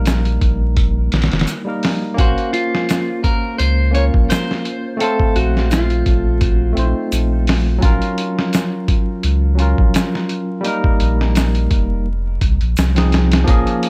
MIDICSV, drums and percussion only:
0, 0, Header, 1, 2, 480
1, 0, Start_track
1, 0, Tempo, 705882
1, 1483, Time_signature, 4, 2, 24, 8
1, 9447, End_track
2, 0, Start_track
2, 0, Title_t, "Drums"
2, 38, Note_on_c, 9, 42, 73
2, 44, Note_on_c, 9, 82, 73
2, 50, Note_on_c, 9, 38, 103
2, 106, Note_off_c, 9, 42, 0
2, 112, Note_off_c, 9, 82, 0
2, 118, Note_off_c, 9, 38, 0
2, 172, Note_on_c, 9, 42, 39
2, 240, Note_off_c, 9, 42, 0
2, 281, Note_on_c, 9, 36, 78
2, 281, Note_on_c, 9, 42, 57
2, 349, Note_off_c, 9, 36, 0
2, 349, Note_off_c, 9, 42, 0
2, 520, Note_on_c, 9, 42, 80
2, 522, Note_on_c, 9, 36, 95
2, 588, Note_off_c, 9, 42, 0
2, 590, Note_off_c, 9, 36, 0
2, 761, Note_on_c, 9, 42, 62
2, 773, Note_on_c, 9, 38, 76
2, 828, Note_off_c, 9, 42, 0
2, 828, Note_on_c, 9, 42, 61
2, 840, Note_off_c, 9, 38, 0
2, 840, Note_on_c, 9, 38, 74
2, 895, Note_off_c, 9, 42, 0
2, 895, Note_on_c, 9, 42, 58
2, 907, Note_off_c, 9, 38, 0
2, 907, Note_on_c, 9, 38, 81
2, 948, Note_off_c, 9, 42, 0
2, 948, Note_on_c, 9, 42, 61
2, 960, Note_off_c, 9, 38, 0
2, 960, Note_on_c, 9, 38, 82
2, 1002, Note_on_c, 9, 82, 69
2, 1004, Note_off_c, 9, 42, 0
2, 1004, Note_on_c, 9, 42, 81
2, 1028, Note_off_c, 9, 38, 0
2, 1070, Note_off_c, 9, 82, 0
2, 1072, Note_off_c, 9, 42, 0
2, 1243, Note_on_c, 9, 46, 73
2, 1256, Note_on_c, 9, 38, 99
2, 1311, Note_off_c, 9, 46, 0
2, 1324, Note_off_c, 9, 38, 0
2, 1484, Note_on_c, 9, 36, 106
2, 1485, Note_on_c, 9, 42, 81
2, 1552, Note_off_c, 9, 36, 0
2, 1553, Note_off_c, 9, 42, 0
2, 1617, Note_on_c, 9, 42, 39
2, 1685, Note_off_c, 9, 42, 0
2, 1724, Note_on_c, 9, 42, 65
2, 1792, Note_off_c, 9, 42, 0
2, 1867, Note_on_c, 9, 38, 49
2, 1935, Note_off_c, 9, 38, 0
2, 1964, Note_on_c, 9, 42, 74
2, 1969, Note_on_c, 9, 82, 68
2, 1976, Note_on_c, 9, 38, 99
2, 2032, Note_off_c, 9, 42, 0
2, 2037, Note_off_c, 9, 82, 0
2, 2044, Note_off_c, 9, 38, 0
2, 2204, Note_on_c, 9, 36, 81
2, 2204, Note_on_c, 9, 42, 62
2, 2272, Note_off_c, 9, 36, 0
2, 2272, Note_off_c, 9, 42, 0
2, 2444, Note_on_c, 9, 42, 79
2, 2512, Note_off_c, 9, 42, 0
2, 2684, Note_on_c, 9, 42, 63
2, 2752, Note_off_c, 9, 42, 0
2, 2815, Note_on_c, 9, 36, 85
2, 2883, Note_off_c, 9, 36, 0
2, 2924, Note_on_c, 9, 42, 82
2, 2929, Note_on_c, 9, 82, 79
2, 2937, Note_on_c, 9, 38, 106
2, 2992, Note_off_c, 9, 42, 0
2, 2997, Note_off_c, 9, 82, 0
2, 3005, Note_off_c, 9, 38, 0
2, 3066, Note_on_c, 9, 38, 41
2, 3134, Note_off_c, 9, 38, 0
2, 3164, Note_on_c, 9, 42, 61
2, 3232, Note_off_c, 9, 42, 0
2, 3403, Note_on_c, 9, 42, 84
2, 3471, Note_off_c, 9, 42, 0
2, 3533, Note_on_c, 9, 36, 91
2, 3601, Note_off_c, 9, 36, 0
2, 3643, Note_on_c, 9, 42, 65
2, 3711, Note_off_c, 9, 42, 0
2, 3786, Note_on_c, 9, 38, 42
2, 3854, Note_off_c, 9, 38, 0
2, 3883, Note_on_c, 9, 42, 71
2, 3884, Note_on_c, 9, 82, 72
2, 3896, Note_on_c, 9, 38, 97
2, 3951, Note_off_c, 9, 42, 0
2, 3952, Note_off_c, 9, 82, 0
2, 3964, Note_off_c, 9, 38, 0
2, 4013, Note_on_c, 9, 42, 38
2, 4081, Note_off_c, 9, 42, 0
2, 4120, Note_on_c, 9, 42, 57
2, 4121, Note_on_c, 9, 36, 85
2, 4188, Note_off_c, 9, 42, 0
2, 4189, Note_off_c, 9, 36, 0
2, 4358, Note_on_c, 9, 42, 82
2, 4361, Note_on_c, 9, 36, 107
2, 4426, Note_off_c, 9, 42, 0
2, 4429, Note_off_c, 9, 36, 0
2, 4603, Note_on_c, 9, 42, 60
2, 4671, Note_off_c, 9, 42, 0
2, 4842, Note_on_c, 9, 42, 81
2, 4844, Note_on_c, 9, 82, 72
2, 4910, Note_off_c, 9, 42, 0
2, 4912, Note_off_c, 9, 82, 0
2, 5081, Note_on_c, 9, 46, 71
2, 5094, Note_on_c, 9, 38, 109
2, 5149, Note_off_c, 9, 46, 0
2, 5162, Note_off_c, 9, 38, 0
2, 5319, Note_on_c, 9, 42, 85
2, 5321, Note_on_c, 9, 36, 104
2, 5387, Note_off_c, 9, 42, 0
2, 5389, Note_off_c, 9, 36, 0
2, 5451, Note_on_c, 9, 42, 42
2, 5519, Note_off_c, 9, 42, 0
2, 5561, Note_on_c, 9, 42, 65
2, 5629, Note_off_c, 9, 42, 0
2, 5703, Note_on_c, 9, 38, 49
2, 5771, Note_off_c, 9, 38, 0
2, 5800, Note_on_c, 9, 42, 75
2, 5804, Note_on_c, 9, 82, 72
2, 5812, Note_on_c, 9, 38, 98
2, 5868, Note_off_c, 9, 42, 0
2, 5872, Note_off_c, 9, 82, 0
2, 5880, Note_off_c, 9, 38, 0
2, 6041, Note_on_c, 9, 36, 90
2, 6041, Note_on_c, 9, 42, 59
2, 6109, Note_off_c, 9, 36, 0
2, 6109, Note_off_c, 9, 42, 0
2, 6278, Note_on_c, 9, 42, 85
2, 6346, Note_off_c, 9, 42, 0
2, 6519, Note_on_c, 9, 42, 64
2, 6587, Note_off_c, 9, 42, 0
2, 6652, Note_on_c, 9, 36, 90
2, 6720, Note_off_c, 9, 36, 0
2, 6760, Note_on_c, 9, 42, 84
2, 6766, Note_on_c, 9, 82, 71
2, 6772, Note_on_c, 9, 38, 111
2, 6828, Note_off_c, 9, 42, 0
2, 6834, Note_off_c, 9, 82, 0
2, 6840, Note_off_c, 9, 38, 0
2, 6904, Note_on_c, 9, 38, 43
2, 6972, Note_off_c, 9, 38, 0
2, 7000, Note_on_c, 9, 42, 61
2, 7068, Note_off_c, 9, 42, 0
2, 7239, Note_on_c, 9, 42, 85
2, 7307, Note_off_c, 9, 42, 0
2, 7372, Note_on_c, 9, 36, 95
2, 7440, Note_off_c, 9, 36, 0
2, 7479, Note_on_c, 9, 42, 66
2, 7547, Note_off_c, 9, 42, 0
2, 7623, Note_on_c, 9, 38, 43
2, 7691, Note_off_c, 9, 38, 0
2, 7720, Note_on_c, 9, 42, 82
2, 7725, Note_on_c, 9, 82, 71
2, 7732, Note_on_c, 9, 38, 105
2, 7788, Note_off_c, 9, 42, 0
2, 7793, Note_off_c, 9, 82, 0
2, 7800, Note_off_c, 9, 38, 0
2, 7852, Note_on_c, 9, 42, 40
2, 7920, Note_off_c, 9, 42, 0
2, 7960, Note_on_c, 9, 42, 65
2, 7961, Note_on_c, 9, 36, 79
2, 8028, Note_off_c, 9, 42, 0
2, 8029, Note_off_c, 9, 36, 0
2, 8441, Note_on_c, 9, 42, 74
2, 8442, Note_on_c, 9, 36, 91
2, 8509, Note_off_c, 9, 42, 0
2, 8510, Note_off_c, 9, 36, 0
2, 8574, Note_on_c, 9, 42, 38
2, 8642, Note_off_c, 9, 42, 0
2, 8682, Note_on_c, 9, 82, 73
2, 8683, Note_on_c, 9, 42, 76
2, 8695, Note_on_c, 9, 38, 101
2, 8750, Note_off_c, 9, 82, 0
2, 8751, Note_off_c, 9, 42, 0
2, 8763, Note_off_c, 9, 38, 0
2, 8813, Note_on_c, 9, 42, 76
2, 8826, Note_on_c, 9, 38, 95
2, 8881, Note_off_c, 9, 42, 0
2, 8894, Note_off_c, 9, 38, 0
2, 8923, Note_on_c, 9, 42, 69
2, 8935, Note_on_c, 9, 38, 101
2, 8991, Note_off_c, 9, 42, 0
2, 9003, Note_off_c, 9, 38, 0
2, 9054, Note_on_c, 9, 42, 72
2, 9066, Note_on_c, 9, 38, 97
2, 9122, Note_off_c, 9, 42, 0
2, 9134, Note_off_c, 9, 38, 0
2, 9163, Note_on_c, 9, 42, 86
2, 9164, Note_on_c, 9, 36, 109
2, 9231, Note_off_c, 9, 42, 0
2, 9232, Note_off_c, 9, 36, 0
2, 9295, Note_on_c, 9, 42, 46
2, 9363, Note_off_c, 9, 42, 0
2, 9404, Note_on_c, 9, 42, 66
2, 9447, Note_off_c, 9, 42, 0
2, 9447, End_track
0, 0, End_of_file